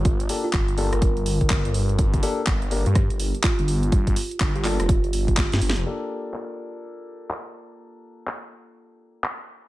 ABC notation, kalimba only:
X:1
M:4/4
L:1/16
Q:"Swing 16ths" 1/4=124
K:Gm
V:1 name="Kalimba"
z3 F z3 B3 z6 | z6 z G z4 F z3 | z4 z G F F z8 | z16 |
z16 |]